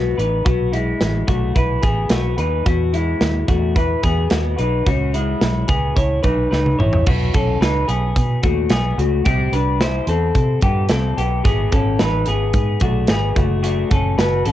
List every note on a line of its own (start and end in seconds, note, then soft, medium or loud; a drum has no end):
0.00 0.14 B1 medium
0.00 0.18 B3 medium
0.00 0.18 F#4 medium
0.18 0.42 A1 medium
0.18 0.45 D#4 medium
0.18 0.45 B4 medium
0.18 closed hi-hat medium
0.45 0.93 B1 loud
0.45 0.72 B3 medium
0.45 0.73 F#4 medium
0.45 kick loud
0.45 closed hi-hat medium
0.73 1.25 G#3 medium
0.73 1.25 E4 medium
0.73 closed hi-hat medium
1.01 1.24 A1 medium
1.01 snare medium
1.01 closed hi-hat medium
1.27 1.51 B1 medium
1.27 1.56 A3 medium
1.27 1.55 F#4 medium
1.27 kick medium
1.27 closed hi-hat medium
1.55 1.79 B1 medium
1.55 1.83 E4 medium
1.55 1.82 B4 medium
1.55 kick medium
1.55 closed hi-hat medium
1.82 2.07 A1 medium
1.82 2.10 B3 medium
1.82 2.10 G#4 medium
1.82 kick medium
1.82 closed hi-hat medium
2.09 2.34 B1 medium
2.09 2.38 B3 medium
2.09 2.37 F#4 medium
2.09 snare loud
2.09 closed hi-hat medium
2.38 2.61 D#2 medium
2.38 2.66 D#4 medium
2.38 2.65 B4 medium
2.38 closed hi-hat medium
2.66 3.13 E2 loud
2.66 2.93 B3 medium
2.66 2.94 F#4 medium
2.66 kick loud
2.66 closed hi-hat medium
2.93 3.46 G#3 medium
2.93 3.45 E4 medium
2.93 closed hi-hat medium
3.21 3.45 D#2 medium
3.21 snare medium
3.21 closed hi-hat medium
3.48 3.95 E2 medium
3.48 3.77 A3 medium
3.48 3.75 F#4 medium
3.48 kick medium
3.48 closed hi-hat medium
3.76 4.04 E4 medium
3.76 4.03 B4 medium
3.76 kick medium
3.76 closed hi-hat medium
4.03 4.27 E2 medium
4.03 4.31 B3 medium
4.03 4.31 G#4 medium
4.03 kick medium
4.03 closed hi-hat medium
4.30 4.55 D#2 medium
4.30 4.59 B3 medium
4.30 4.57 F#4 medium
4.30 snare loud
4.30 closed hi-hat medium
4.58 4.82 B1 medium
4.58 4.86 D#4 medium
4.58 4.86 B4 medium
4.58 closed hi-hat medium
4.86 5.33 C#2 loud
4.86 5.14 C#4 medium
4.86 5.14 F#4 medium
4.86 kick loud
4.86 closed hi-hat medium
5.14 5.66 G#3 medium
5.14 5.66 E4 medium
5.14 closed hi-hat medium
5.41 5.64 B1 medium
5.41 snare medium
5.41 closed hi-hat medium
5.68 5.92 C#2 medium
5.68 5.96 B3 medium
5.68 5.96 G#4 medium
5.68 kick medium
5.68 closed hi-hat medium
5.96 6.20 C#2 medium
5.96 6.23 E4 medium
5.96 6.22 C#5 medium
5.96 kick medium
5.96 closed hi-hat medium
6.23 6.47 B1 medium
6.23 6.51 D#4 medium
6.23 6.50 B4 medium
6.23 kick medium
6.23 closed hi-hat medium
6.51 6.75 C#2 medium
6.51 6.79 D#4 medium
6.51 6.78 B4 medium
6.51 snare medium
6.66 high tom medium
6.79 7.02 A1 medium
6.79 7.07 E4 medium
6.79 7.06 C#5 medium
6.79 mid tom medium
6.93 floor tom medium
7.06 7.30 B1 loud
7.06 7.34 B3 medium
7.06 7.34 F#4 medium
7.06 kick loud
7.06 crash medium
7.34 7.57 B1 medium
7.34 7.61 C#4 medium
7.34 7.60 A4 medium
7.34 kick loud
7.34 closed hi-hat medium
7.61 7.84 C#2 medium
7.61 7.88 D#4 medium
7.61 7.87 B4 medium
7.61 snare medium
7.61 closed hi-hat medium
7.88 8.12 B1 medium
7.88 8.40 B3 medium
7.88 8.40 G#4 medium
7.88 closed hi-hat medium
8.16 8.39 B2 medium
8.16 kick medium
8.16 closed hi-hat medium
8.43 8.67 D#2 medium
8.43 8.71 A3 medium
8.43 8.70 F#4 medium
8.43 kick medium
8.43 closed hi-hat medium
8.70 8.94 B1 medium
8.70 8.98 B3 medium
8.70 8.98 G#4 medium
8.70 snare loud
8.70 closed hi-hat medium
8.98 9.21 C#2 medium
8.98 9.26 A3 medium
8.98 9.24 F#4 medium
8.98 closed hi-hat medium
9.25 9.49 C2 medium
9.25 9.53 C4 medium
9.25 9.53 G4 medium
9.25 kick loud
9.25 closed hi-hat medium
9.52 9.99 C2 medium
9.52 9.81 D4 medium
9.52 9.80 B4 medium
9.52 closed hi-hat medium
9.81 10.09 E4 medium
9.81 10.08 C5 medium
9.81 snare loud
9.81 closed hi-hat medium
10.07 10.31 E2 medium
10.07 10.60 C4 medium
10.07 10.60 A4 medium
10.07 closed hi-hat medium
10.35 10.59 C3 loud
10.35 kick medium
10.35 closed hi-hat medium
10.61 10.86 G2 medium
10.61 10.90 B3 medium
10.61 10.89 G4 medium
10.61 kick medium
10.61 closed hi-hat medium
10.89 11.13 C2 medium
10.89 11.18 C4 medium
10.89 11.17 A4 medium
10.89 snare loud
10.89 closed hi-hat medium
11.17 11.41 B1 medium
11.17 11.44 B3 medium
11.17 11.44 G4 medium
11.17 closed hi-hat medium
11.44 11.68 G#1 loud
11.44 11.73 B3 medium
11.44 11.72 G#4 medium
11.44 kick loud
11.44 closed hi-hat medium
11.72 11.96 G#1 medium
11.72 12.00 C#4 medium
11.72 12.00 A4 medium
11.72 kick loud
11.72 closed hi-hat medium
11.99 12.23 A1 medium
11.99 12.28 D#4 medium
11.99 12.27 B4 medium
11.99 snare loud
11.99 closed hi-hat medium
12.26 12.51 G#1 medium
12.26 12.79 B3 medium
12.26 12.79 G#4 medium
12.26 closed hi-hat medium
12.54 12.78 G#2 medium
12.54 kick medium
12.54 closed hi-hat medium
12.80 13.05 B1 medium
12.80 13.10 A3 medium
12.80 13.09 F#4 medium
12.80 kick medium
12.80 closed hi-hat medium
13.07 13.32 G#1 medium
13.07 13.37 B3 medium
13.07 13.36 G#4 medium
13.07 snare loud
13.07 closed hi-hat medium
13.36 13.83 F#1 medium
13.36 13.62 A3 medium
13.36 13.62 F#4 medium
13.36 kick medium
13.36 closed hi-hat medium
13.63 13.91 A3 medium
13.63 13.91 F#4 medium
13.63 closed hi-hat medium
13.91 14.15 F#1 medium
13.91 14.18 C#4 medium
13.91 14.17 A4 medium
13.91 kick loud
13.91 closed hi-hat medium
14.18 14.42 F#1 medium
14.18 14.46 F#4 medium
14.18 14.45 B4 medium
14.18 snare loud
14.18 closed hi-hat medium
14.45 14.52 A1 medium
14.45 14.52 C#4 medium
14.45 14.52 A4 medium
14.45 closed hi-hat medium